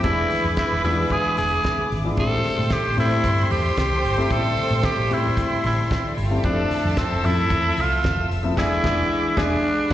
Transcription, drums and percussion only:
0.03 kick loud
0.03 closed hi-hat medium
0.03 muted conga soft
0.30 open hi-hat medium
0.30 high conga medium
0.44 high conga medium
0.57 kick loud
0.57 snare loud
0.57 closed hi-hat medium
0.57 muted conga soft
0.84 open hi-hat medium
0.84 low conga medium
0.98 low conga medium
1.10 kick loud
1.10 closed hi-hat medium
1.10 high conga medium
1.10 low conga medium
1.25 muted conga soft
1.37 open hi-hat medium
1.37 high conga medium
1.64 kick medium
1.64 snare medium
1.64 closed hi-hat medium
1.78 muted conga soft
1.78 high conga medium
1.91 open hi-hat medium
1.91 high conga soft
2.17 kick loud
2.17 closed hi-hat medium
2.31 muted conga soft
2.44 open hi-hat medium
2.44 high conga medium
2.58 high conga medium
2.70 kick loud
2.70 snare loud
2.70 closed hi-hat medium
2.70 muted conga soft
2.98 open hi-hat medium
2.98 low conga medium
3.11 low conga medium
3.24 kick medium
3.24 closed hi-hat medium
3.24 high conga medium
3.24 low conga medium
3.39 muted conga soft
3.51 open hi-hat medium
3.51 high conga medium
3.77 kick medium
3.77 snare loud
3.77 closed hi-hat medium
3.77 muted conga soft
3.92 muted conga soft
3.92 high conga medium
4.05 open hi-hat medium
4.05 high conga soft
4.30 kick loud
4.30 closed hi-hat medium
4.46 muted conga soft
4.57 open hi-hat medium
4.57 high conga medium
4.71 high conga medium
4.83 kick loud
4.83 snare loud
4.83 closed hi-hat medium
4.83 muted conga soft
4.98 muted conga soft
5.11 open hi-hat medium
5.11 low conga medium
5.25 low conga medium
5.37 kick medium
5.37 closed hi-hat medium
5.37 high conga medium
5.37 low conga medium
5.52 muted conga soft
5.64 open hi-hat medium
5.64 high conga medium
5.91 kick loud
5.91 snare medium
5.91 closed hi-hat medium
5.91 muted conga soft
6.05 high conga medium
6.18 open hi-hat medium
6.18 high conga soft
6.43 kick loud
6.43 closed hi-hat medium
6.43 muted conga soft
6.71 open hi-hat medium
6.71 high conga medium
6.85 high conga medium
6.97 kick loud
6.97 snare loud
6.97 closed hi-hat medium
7.24 open hi-hat medium
7.24 low conga medium
7.37 low conga medium
7.50 kick loud
7.50 closed hi-hat medium
7.50 high conga medium
7.50 low conga medium
7.77 open hi-hat medium
7.77 high conga medium
8.04 kick medium
8.04 snare loud
8.04 closed hi-hat medium
8.04 muted conga soft
8.17 muted conga soft
8.17 high conga medium
8.31 open hi-hat medium
8.31 high conga soft
8.57 kick medium
8.57 snare medium
8.57 crash medium
8.84 kick loud
8.84 snare loud
9.37 kick loud
9.37 snare loud
9.90 crash medium

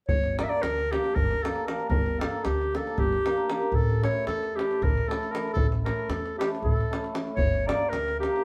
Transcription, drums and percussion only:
0.09 davul low loud
0.24 davul high soft
0.39 davul high medium
0.63 davul high medium
0.78 davul high soft
0.93 davul high medium
1.04 davul high soft
1.16 davul low medium
1.31 davul high soft
1.45 davul high medium
1.56 davul high soft
1.68 davul high medium
1.80 davul high soft
1.91 davul low loud
2.06 davul high soft
2.21 davul high medium
2.45 davul high medium
2.62 davul high soft
2.75 davul high medium
2.87 davul high soft
2.98 davul low medium
3.13 davul high soft
3.26 davul high medium
3.38 davul high soft
3.50 davul high medium
3.62 davul high soft
3.73 davul low medium
3.90 davul high soft
4.04 davul high medium
4.27 davul high medium
4.43 davul high soft
4.59 davul high medium
4.71 davul high soft
4.84 davul low medium
4.98 davul high soft
5.11 davul high medium
5.23 davul high soft
5.35 davul high medium
5.47 davul high soft
5.57 davul low loud
5.72 davul high soft
5.86 davul high medium
6.10 davul high medium
6.26 davul high soft
6.41 davul high medium
6.55 davul high soft
6.66 davul low medium
6.81 davul high soft
6.93 davul high medium
7.04 davul high soft
7.15 davul high medium
7.27 davul high soft
7.38 davul low medium
7.54 davul high soft
7.69 davul high medium
7.93 davul high medium
8.08 davul high soft
8.23 davul high soft
8.36 davul high soft

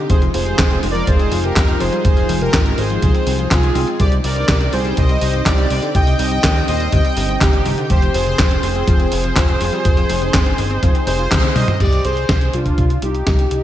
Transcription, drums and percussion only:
0.10 kick loud
0.10 closed hi-hat medium
0.22 closed hi-hat soft
0.34 open hi-hat loud
0.46 closed hi-hat soft
0.59 kick loud
0.59 snare loud
0.59 clap loud
0.59 closed hi-hat medium
0.71 closed hi-hat soft
0.83 open hi-hat loud
0.95 closed hi-hat soft
1.07 kick loud
1.07 closed hi-hat medium
1.19 closed hi-hat soft
1.32 open hi-hat loud
1.44 closed hi-hat soft
1.56 kick loud
1.56 snare loud
1.56 clap loud
1.56 closed hi-hat loud
1.68 closed hi-hat soft
1.80 open hi-hat loud
1.93 closed hi-hat soft
2.05 kick loud
2.05 closed hi-hat medium
2.17 closed hi-hat soft
2.29 open hi-hat loud
2.41 closed hi-hat soft
2.54 kick loud
2.54 snare loud
2.54 clap loud
2.54 closed hi-hat medium
2.66 closed hi-hat soft
2.78 open hi-hat loud
2.90 closed hi-hat soft
3.02 kick loud
3.02 closed hi-hat medium
3.15 closed hi-hat soft
3.27 open hi-hat loud
3.39 closed hi-hat soft
3.51 kick loud
3.51 snare loud
3.51 clap loud
3.51 closed hi-hat medium
3.63 closed hi-hat soft
3.75 open hi-hat loud
3.88 closed hi-hat soft
4.00 kick loud
4.00 closed hi-hat medium
4.12 closed hi-hat soft
4.24 open hi-hat loud
4.36 closed hi-hat soft
4.48 kick loud
4.48 snare loud
4.48 clap medium
4.48 closed hi-hat medium
4.61 closed hi-hat soft
4.73 open hi-hat loud
4.85 closed hi-hat soft
4.97 kick loud
4.97 closed hi-hat medium
5.09 closed hi-hat soft
5.21 open hi-hat loud
5.34 closed hi-hat soft
5.46 kick loud
5.46 snare loud
5.46 clap loud
5.46 closed hi-hat medium
5.58 closed hi-hat soft
5.70 open hi-hat loud
5.83 closed hi-hat soft
5.95 kick loud
5.95 closed hi-hat medium
6.07 closed hi-hat soft
6.19 open hi-hat loud
6.32 closed hi-hat soft
6.44 kick loud
6.44 snare loud
6.44 clap loud
6.44 closed hi-hat medium
6.56 closed hi-hat soft
6.68 open hi-hat loud
6.80 closed hi-hat soft
6.92 kick loud
6.92 closed hi-hat medium
7.05 closed hi-hat soft
7.17 open hi-hat loud
7.29 closed hi-hat soft
7.41 kick loud
7.41 snare loud
7.41 clap loud
7.41 closed hi-hat medium
7.53 closed hi-hat soft
7.66 open hi-hat loud
7.78 closed hi-hat soft
7.90 kick loud
7.90 closed hi-hat loud
8.02 closed hi-hat soft
8.14 open hi-hat loud
8.27 closed hi-hat soft
8.39 kick loud
8.39 snare loud
8.39 clap loud
8.39 closed hi-hat loud
8.51 closed hi-hat soft
8.63 open hi-hat loud
8.75 closed hi-hat soft
8.87 kick loud
8.87 closed hi-hat loud
9.00 closed hi-hat soft
9.12 open hi-hat loud
9.24 closed hi-hat soft
9.36 kick loud
9.36 snare loud
9.36 clap loud
9.36 closed hi-hat loud
9.49 closed hi-hat soft
9.61 open hi-hat loud
9.73 closed hi-hat soft
9.85 kick loud
9.85 closed hi-hat loud
9.97 closed hi-hat soft
10.10 open hi-hat loud
10.22 closed hi-hat soft
10.34 kick loud
10.34 snare loud
10.34 clap loud
10.34 closed hi-hat loud
10.46 closed hi-hat soft
10.58 open hi-hat loud
10.71 closed hi-hat soft
10.83 kick loud
10.83 closed hi-hat loud
10.95 closed hi-hat soft
11.07 open hi-hat loud
11.19 closed hi-hat soft
11.31 kick loud
11.31 snare loud
11.31 clap loud
11.31 closed hi-hat medium
11.31 high tom medium
11.44 closed hi-hat soft
11.44 high tom medium
11.56 open hi-hat loud
11.56 mid tom medium
11.68 closed hi-hat soft
11.68 mid tom medium
11.80 kick loud
11.80 closed hi-hat medium
11.80 crash medium
11.92 closed hi-hat soft
12.05 closed hi-hat medium
12.17 closed hi-hat soft
12.29 kick loud
12.29 snare loud
12.29 closed hi-hat medium
12.41 closed hi-hat soft
12.53 closed hi-hat medium
12.66 kick medium
12.66 closed hi-hat soft
12.78 kick loud
12.78 closed hi-hat medium
12.90 closed hi-hat soft
13.02 closed hi-hat medium
13.15 closed hi-hat soft
13.27 kick loud
13.27 snare loud
13.27 closed hi-hat medium
13.39 closed hi-hat soft
13.51 closed hi-hat medium

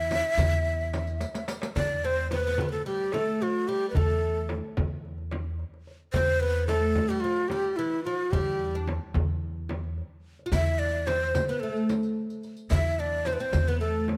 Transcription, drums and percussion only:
0.11 riq soft
0.11 darbuka tek medium
0.11 frame drum medium
0.24 riq soft
0.24 darbuka ka soft
0.38 riq medium
0.38 frame drum medium
0.38 darbuka dum medium
0.53 riq soft
0.66 riq soft
0.66 darbuka ka soft
0.81 riq soft
0.81 darbuka ka soft
0.93 riq soft
0.93 darbuka tek medium
0.93 frame drum medium
1.07 riq soft
1.07 darbuka ka soft
1.21 riq medium
1.21 darbuka tek medium
1.35 riq medium
1.35 darbuka ka medium
1.48 riq medium
1.48 darbuka tek medium
1.62 riq medium
1.62 darbuka ka medium
1.76 frame drum medium
1.76 darbuka dum medium
2.04 darbuka ka soft
2.31 darbuka tek medium
2.31 frame drum medium
2.45 darbuka ka soft
2.58 darbuka dum medium
2.58 frame drum medium
2.85 darbuka ka soft
2.99 darbuka ka soft
3.12 darbuka tek medium
3.12 frame drum medium
3.40 darbuka ka soft
3.54 darbuka ka soft
3.67 darbuka ka soft
3.95 darbuka dum medium
3.95 frame drum medium
4.49 darbuka tek medium
4.49 frame drum medium
4.64 darbuka ka soft
4.77 darbuka dum medium
4.77 frame drum medium
5.05 darbuka ka soft
5.18 darbuka ka soft
5.32 darbuka tek medium
5.32 frame drum medium
5.59 darbuka ka soft
5.74 darbuka ka soft
5.87 darbuka ka soft
6.14 frame drum medium
6.14 darbuka dum medium
6.42 darbuka ka soft
6.68 darbuka tek medium
6.68 frame drum medium
6.82 darbuka ka soft
6.96 frame drum medium
7.24 darbuka ka soft
7.37 darbuka ka soft
7.50 darbuka tek medium
7.50 frame drum medium
7.77 darbuka ka soft
7.91 darbuka ka soft
8.06 darbuka ka soft
8.32 frame drum medium
8.32 darbuka dum medium
8.46 darbuka ka soft
8.60 darbuka ka soft
8.88 darbuka tek medium
8.88 frame drum medium
9.14 frame drum medium
9.14 darbuka dum medium
9.29 darbuka ka soft
9.69 darbuka tek medium
9.69 frame drum medium
9.84 darbuka ka soft
9.98 darbuka ka soft
10.39 darbuka ka soft
10.52 riq medium
10.52 frame drum medium
10.52 darbuka dum medium
10.66 riq soft
10.80 darbuka ka soft
11.07 riq soft
11.07 darbuka tek medium
11.07 frame drum medium
11.21 darbuka ka soft
11.35 riq medium
11.35 darbuka dum medium
11.35 frame drum medium
11.49 riq soft
11.62 darbuka ka soft
11.75 riq soft
11.75 darbuka ka soft
11.89 riq soft
11.89 darbuka tek medium
11.89 frame drum medium
12.03 riq soft
12.17 darbuka ka soft
12.30 riq soft
12.30 darbuka ka soft
12.43 riq soft
12.43 darbuka ka soft
12.57 riq soft
12.70 riq medium
12.70 darbuka dum medium
12.70 frame drum medium
12.85 riq soft
12.99 darbuka ka soft
13.25 riq soft
13.25 darbuka tek medium
13.25 frame drum medium
13.39 riq soft
13.39 darbuka ka soft
13.53 riq medium
13.53 frame drum medium
13.53 darbuka dum medium
13.67 riq soft
13.96 darbuka ka soft
14.08 darbuka tek medium
14.08 frame drum medium

